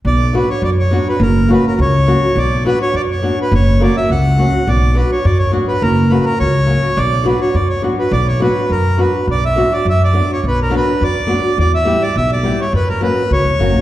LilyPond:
<<
  \new Staff \with { instrumentName = "Accordion" } { \time 2/4 \key b \minor \tempo 4 = 104 d''8 b'16 cis''16 d''16 cis''8 b'16 | ais'8 b'16 ais'16 cis''4 | d''8 b'16 cis''16 d''16 cis''8 b'16 | cis''8 d''16 e''16 fis''4 |
d''8 b'16 cis''16 d''16 cis''8 b'16 | ais'8 b'16 ais'16 cis''4 | d''8 b'16 cis''16 d''16 cis''8 b'16 | d''16 cis''16 b'8 ais'8 b'8 |
d''16 e''8 d''16 e''16 d''8 cis''16 | b'16 ais'16 b'8 d''4 | d''16 e''8 d''16 e''16 d''8 cis''16 | b'16 ais'16 b'8 cis''4 | }
  \new Staff \with { instrumentName = "Nylon-string guitar" } { \time 2/4 \key b \minor r8 <fis b d' fis'>8 r8 <fis b d' fis'>8 | r8 <fis ais cis' fis'>8 r8 <fis ais cis' fis'>8 | r8 <fis b d' fis'>8 r8 <fis b d' fis'>8 | r8 <fis ais cis' fis'>8 r8 <fis ais cis' fis'>8 |
r8 <fis b d' fis'>8 r8 <fis b d' fis'>8 | r8 <fis ais cis' fis'>8 r8 <fis ais cis' fis'>8 | r8 <fis b d' fis'>8 r8 <fis b d' fis'>8 | r8 <fis b d' fis'>8 r8 <fis b d' fis'>8 |
r8 <fis b d' fis'>8 r8 <fis b d' fis'>8 | r8 <fis b d' fis'>8 r8 <fis b d' fis'>8 | r8 <g b e' g'>8 r8 <g b e' g'>8 | r8 <fis ais cis' fis'>8 r8 <fis ais cis' fis'>8 | }
  \new Staff \with { instrumentName = "Upright bass" } { \clef bass \time 2/4 \key b \minor b,,4 fis,4 | fis,,4 cis,4 | b,,4 fis,4 | fis,,4 cis,4 |
b,,4 fis,4 | fis,,4 cis,4 | b,,4 fis,4 | b,,4 fis,4 |
b,,4 fis,4 | b,,4 fis,4 | e,4 b,,4 | fis,4 cis,16 e,,16 fis,,16 ais,,16 | }
>>